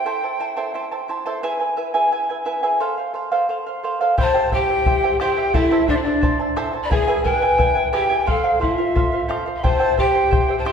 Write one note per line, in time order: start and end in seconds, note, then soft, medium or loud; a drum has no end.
0.00 1.09 G5 medium
0.05 0.23 E4 medium
0.05 0.23 A4 medium
0.05 0.22 C5 medium
0.05 0.23 E5 medium
0.05 0.22 A5 medium
0.23 0.39 E4 soft
0.23 0.39 C5 soft
0.23 0.39 A5 soft
0.40 0.56 E4 medium
0.40 0.56 C5 medium
0.40 0.56 E5 medium
0.40 0.55 A5 medium
0.56 0.73 E4 medium
0.56 0.74 A4 soft
0.56 0.74 C5 medium
0.56 0.73 E5 medium
0.56 0.74 A5 medium
0.74 0.91 E4 medium
0.74 0.91 C5 medium
0.74 0.92 E5 medium
0.74 0.90 A5 medium
0.91 1.08 E4 soft
0.91 1.08 C5 soft
0.91 1.09 A5 medium
1.08 1.25 E4 medium
1.08 1.25 C5 medium
1.08 1.26 E5 soft
1.08 1.24 A5 medium
1.26 1.42 E4 medium
1.26 1.43 A4 medium
1.26 1.43 C5 medium
1.26 1.42 E5 medium
1.26 1.43 A5 medium
1.43 1.60 E4 medium
1.43 1.60 G#4 medium
1.43 1.59 B4 medium
1.43 1.60 E5 medium
1.43 1.59 G#5 medium
1.60 1.76 E4 soft
1.60 1.76 B4 soft
1.60 1.77 G#5 soft
1.77 1.93 E4 medium
1.77 1.93 B4 medium
1.77 1.94 E5 medium
1.77 1.93 G#5 medium
1.94 2.11 E4 medium
1.94 2.12 G#4 medium
1.94 2.11 B4 medium
1.94 2.10 E5 medium
1.94 2.11 G#5 medium
2.12 2.29 E4 medium
2.12 2.29 B4 medium
2.12 2.29 E5 medium
2.12 2.28 G#5 medium
2.29 2.44 E4 soft
2.29 2.45 B4 soft
2.29 2.45 G#5 medium
2.45 2.62 E4 medium
2.45 2.62 B4 medium
2.45 2.62 E5 medium
2.45 2.62 G#5 medium
2.63 2.80 E4 medium
2.63 2.81 G#4 soft
2.63 2.80 B4 medium
2.63 2.80 E5 medium
2.63 2.80 G#5 medium
2.80 2.97 A4 medium
2.80 2.97 C5 medium
2.80 2.96 F5 medium
2.98 3.13 C5 soft
2.98 3.14 F5 soft
3.14 3.31 A4 medium
3.14 3.31 C5 medium
3.14 3.30 F5 medium
3.32 3.48 A4 medium
3.32 3.48 C5 medium
3.32 3.49 F5 medium
3.49 3.66 A4 medium
3.49 3.66 C5 medium
3.49 3.65 F5 medium
3.66 3.83 C5 soft
3.66 3.83 F5 medium
3.83 4.00 A4 medium
3.83 4.00 C5 medium
3.83 3.99 F5 medium
4.01 4.18 A4 soft
4.01 4.17 C5 medium
4.01 4.17 F5 medium
4.17 4.34 E4 medium
4.17 4.34 G4 medium
4.17 4.33 C5 medium
4.17 4.51 C5 loud
4.17 4.34 E5 medium
4.17 4.33 G5 medium
4.17 4.24 B5 medium
4.17 bombo low medium
4.23 4.50 A5 loud
4.34 4.51 E4 medium
4.34 4.52 G4 soft
4.34 4.51 C5 medium
4.34 4.51 E5 medium
4.34 4.51 G5 medium
4.52 4.69 E4 medium
4.52 5.17 G4 medium
4.52 4.68 C5 medium
4.52 4.69 E5 medium
4.52 4.67 G5 medium
4.52 5.17 G5 loud
4.52 bombo low medium
4.69 4.85 E4 soft
4.69 4.86 C5 soft
4.69 4.86 G5 soft
4.86 5.03 E4 medium
4.86 5.03 C5 medium
4.86 5.03 E5 medium
4.86 5.02 G5 medium
4.86 bombo low medium
5.04 5.20 E4 soft
5.04 5.20 C5 soft
5.04 5.20 G5 medium
5.20 5.37 E4 medium
5.20 5.57 G4 medium
5.20 5.37 G4 medium
5.20 5.36 C5 medium
5.20 5.37 E5 medium
5.20 5.56 G5 medium
5.20 5.35 G5 medium
5.20 bombo rim medium
5.36 5.53 E4 soft
5.36 5.53 C5 soft
5.36 5.54 G5 medium
5.54 5.71 E4 medium
5.54 5.88 E4 medium
5.54 5.71 A4 medium
5.54 5.70 C5 medium
5.54 5.71 E5 medium
5.54 5.88 E5 medium
5.54 5.70 A5 medium
5.54 bombo low medium
5.71 5.87 E4 medium
5.71 5.88 A4 medium
5.71 5.87 C5 medium
5.71 5.87 E5 medium
5.71 5.88 A5 medium
5.88 5.98 D4 medium
5.88 6.05 E4 medium
5.88 6.05 C5 medium
5.88 5.97 D5 medium
5.88 6.05 E5 medium
5.88 6.04 A5 medium
5.88 bombo low medium
5.95 6.04 E4 medium
5.95 6.03 C5 medium
6.02 6.57 D4 medium
6.02 6.21 C5 soft
6.02 6.56 D5 medium
6.02 6.22 A5 soft
6.06 6.21 E4 soft
6.21 6.39 E4 medium
6.21 6.39 C5 medium
6.21 6.39 E5 medium
6.21 6.38 A5 medium
6.21 bombo low medium
6.39 6.55 E4 soft
6.39 6.56 C5 soft
6.39 6.56 A5 soft
6.56 6.73 E4 medium
6.56 6.73 A4 medium
6.56 6.73 C5 medium
6.56 6.74 E5 medium
6.56 6.72 A5 medium
6.56 bombo rim medium
6.73 6.90 E4 soft
6.73 6.90 C5 soft
6.73 6.90 A5 medium
6.83 6.93 D5 medium
6.83 6.92 B5 medium
6.91 7.07 E4 medium
6.91 7.08 G#4 medium
6.91 7.23 G#4 medium
6.91 7.07 B4 medium
6.91 7.07 E5 medium
6.91 7.25 G#5 loud
6.91 7.06 G#5 medium
6.91 bombo low medium
7.08 7.23 E4 medium
7.08 7.25 G#4 medium
7.08 7.24 B4 medium
7.08 7.23 E5 medium
7.08 7.24 G#5 medium
7.23 7.42 E4 medium
7.23 7.34 A#4 medium
7.23 7.41 B4 medium
7.23 7.42 E5 medium
7.23 7.89 G5 loud
7.23 7.41 G#5 medium
7.23 bombo low medium
7.34 7.88 B4 medium
7.42 7.57 E4 soft
7.42 7.57 B4 soft
7.42 7.58 G#5 medium
7.58 7.75 E4 medium
7.58 7.75 B4 medium
7.58 7.75 E5 medium
7.58 7.74 G#5 medium
7.58 bombo low medium
7.75 7.92 E4 soft
7.75 7.92 B4 soft
7.75 7.92 G#5 medium
7.93 8.10 E4 medium
7.93 8.29 G4 medium
7.93 8.10 G#4 medium
7.93 8.09 B4 medium
7.93 8.10 E5 medium
7.93 8.30 G5 medium
7.93 8.08 G#5 medium
7.93 bombo rim soft
8.09 8.27 E4 soft
8.09 8.26 B4 soft
8.09 8.27 G#5 medium
8.26 8.44 A4 medium
8.26 8.63 A4 medium
8.26 8.43 C5 medium
8.26 8.43 F5 medium
8.26 8.64 F5 medium
8.26 bombo low medium
8.44 8.59 A4 soft
8.44 8.60 C5 medium
8.44 8.60 F5 medium
8.60 8.74 E4 medium
8.60 8.77 A4 medium
8.60 8.77 C5 medium
8.60 9.30 E5 medium
8.60 8.77 F5 medium
8.60 bombo low medium
8.74 9.29 F4 medium
8.74 8.95 F5 medium
8.79 8.95 C5 soft
8.95 9.12 A4 medium
8.95 9.12 C5 medium
8.95 9.11 F5 medium
8.95 bombo low medium
9.12 9.28 C5 soft
9.12 9.28 F5 medium
9.28 9.46 A4 medium
9.28 9.46 C5 medium
9.28 9.45 F5 medium
9.28 bombo rim medium
9.46 9.63 C5 soft
9.46 9.63 F5 medium
9.56 9.66 E5 medium
9.56 9.65 C6 medium
9.63 9.79 E4 medium
9.63 9.79 G4 medium
9.63 9.79 C5 medium
9.63 9.98 C5 medium
9.63 9.79 E5 medium
9.63 9.78 G5 medium
9.63 9.98 A5 loud
9.63 bombo low medium
9.80 9.97 E4 medium
9.80 9.98 G4 soft
9.80 9.97 C5 medium
9.80 9.96 E5 soft
9.80 9.97 G5 medium
9.97 10.14 E4 medium
9.97 10.56 G4 medium
9.97 10.14 C5 medium
9.97 10.15 E5 medium
9.97 10.55 G5 loud
9.97 10.13 G5 medium
9.97 bombo low medium
10.14 10.30 E4 soft
10.14 10.31 C5 soft
10.14 10.31 G5 medium
10.31 10.49 E4 medium
10.31 10.48 C5 medium
10.31 10.48 E5 medium
10.31 10.47 G5 medium
10.31 bombo low medium
10.49 10.65 E4 soft
10.49 10.65 C5 soft
10.49 10.65 G5 medium
10.58 10.68 C5 medium
10.58 10.68 A5 medium
10.65 10.72 E4 medium
10.65 10.72 G4 medium
10.65 10.72 C5 medium
10.65 10.72 E5 medium
10.65 10.72 G5 medium
10.65 bombo rim medium